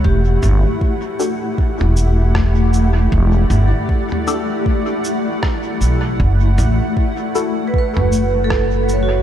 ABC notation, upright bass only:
X:1
M:4/4
L:1/16
Q:"Swing 16ths" 1/4=78
K:Edor
V:1 name="Upright bass" clef=bass
E,,,2 G,,, z6 E,,,6- E,,, | E,,,2 G,,, z8 z3 B,,,2 | F,,,2 A,,, z6 F,,,6- F,,, |]